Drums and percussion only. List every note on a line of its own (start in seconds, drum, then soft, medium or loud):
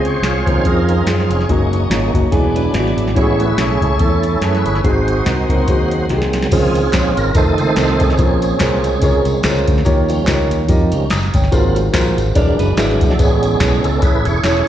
0.05 closed hi-hat medium
0.23 snare loud
0.23 closed hi-hat medium
0.47 kick medium
0.47 closed hi-hat medium
0.65 kick medium
0.65 closed hi-hat medium
0.89 closed hi-hat medium
1.07 snare medium
1.07 closed hi-hat medium
1.20 snare soft
1.31 closed hi-hat medium
1.41 snare soft
1.49 kick medium
1.49 closed hi-hat medium
1.73 closed hi-hat medium
1.91 snare loud
1.91 closed hi-hat medium
2.14 kick medium
2.14 closed hi-hat medium
2.32 kick loud
2.32 closed hi-hat medium
2.56 closed hi-hat medium
2.74 snare loud
2.74 closed hi-hat medium
2.87 snare soft
2.98 closed hi-hat medium
3.08 snare soft
3.16 kick loud
3.16 closed hi-hat medium
3.40 closed hi-hat medium
3.58 snare loud
3.58 closed hi-hat medium
3.82 kick medium
3.82 closed hi-hat medium
3.99 kick loud
3.99 closed hi-hat medium
4.23 closed hi-hat medium
4.42 snare medium
4.42 closed hi-hat medium
4.55 snare soft
4.66 closed hi-hat medium
4.75 snare soft
4.84 kick medium
4.84 closed hi-hat medium
5.08 closed hi-hat medium
5.26 kick medium
5.26 snare medium
5.26 closed hi-hat medium
5.50 kick medium
5.50 closed hi-hat medium
5.68 kick loud
5.68 closed hi-hat loud
5.91 closed hi-hat medium
6.09 snare soft
6.09 closed hi-hat medium
6.22 snare medium
6.33 snare medium
6.33 closed hi-hat medium
6.42 snare medium
6.51 kick loud
6.51 closed hi-hat medium
6.51 crash medium
6.51 tambourine medium
6.75 closed hi-hat medium
6.75 tambourine medium
6.93 kick medium
6.93 snare loud
6.93 clap medium
6.93 closed hi-hat medium
6.93 tambourine medium
7.17 closed hi-hat medium
7.17 tambourine medium
7.35 kick loud
7.35 closed hi-hat loud
7.35 tambourine medium
7.58 closed hi-hat medium
7.58 tambourine medium
7.76 snare loud
7.76 clap medium
7.76 closed hi-hat medium
7.76 tambourine loud
7.89 snare soft
8.00 kick loud
8.00 closed hi-hat medium
8.00 tambourine medium
8.10 snare soft
8.17 kick loud
8.17 closed hi-hat medium
8.17 tambourine medium
8.42 closed hi-hat medium
8.42 tambourine medium
8.60 kick medium
8.60 snare loud
8.60 clap medium
8.60 closed hi-hat medium
8.60 tambourine medium
8.84 closed hi-hat medium
8.84 tambourine medium
9.02 kick loud
9.02 closed hi-hat loud
9.02 tambourine medium
9.25 closed hi-hat medium
9.25 tambourine medium
9.43 snare loud
9.43 clap loud
9.43 closed hi-hat medium
9.43 tambourine loud
9.57 snare soft
9.68 kick loud
9.68 closed hi-hat medium
9.68 tambourine medium
9.78 snare soft
9.85 kick loud
9.85 closed hi-hat medium
9.85 tambourine medium
10.08 closed hi-hat medium
10.08 tambourine medium
10.27 kick medium
10.27 snare loud
10.27 clap loud
10.27 closed hi-hat medium
10.27 tambourine medium
10.51 closed hi-hat medium
10.51 tambourine medium
10.69 kick loud
10.69 closed hi-hat loud
10.69 tambourine medium
10.92 closed hi-hat medium
10.92 tambourine medium
11.10 snare loud
11.10 clap loud
11.10 closed hi-hat medium
11.10 tambourine medium
11.23 snare soft
11.34 kick medium
11.34 closed hi-hat medium
11.34 tambourine medium
11.44 snare soft
11.52 kick loud
11.52 closed hi-hat medium
11.52 tambourine medium
11.76 closed hi-hat medium
11.76 tambourine medium
11.94 kick medium
11.94 snare loud
11.94 clap loud
11.94 closed hi-hat medium
11.94 tambourine medium
12.18 closed hi-hat medium
12.18 tambourine medium
12.35 kick loud
12.35 closed hi-hat loud
12.35 tambourine medium
12.59 closed hi-hat medium
12.59 tambourine medium
12.77 snare loud
12.77 clap loud
12.77 closed hi-hat medium
12.77 tambourine loud
12.90 snare soft
13.01 kick loud
13.01 closed hi-hat medium
13.01 tambourine medium
13.11 snare soft
13.19 kick loud
13.19 closed hi-hat medium
13.19 tambourine medium
13.43 closed hi-hat medium
13.43 tambourine medium
13.60 kick loud
13.60 snare loud
13.60 clap medium
13.60 closed hi-hat medium
13.60 tambourine loud
13.84 closed hi-hat medium
13.84 tambourine medium
14.02 kick loud
14.02 closed hi-hat loud
14.02 tambourine medium
14.25 closed hi-hat medium
14.25 tambourine medium
14.43 snare medium
14.43 clap loud
14.43 closed hi-hat medium
14.43 tambourine loud
14.57 snare soft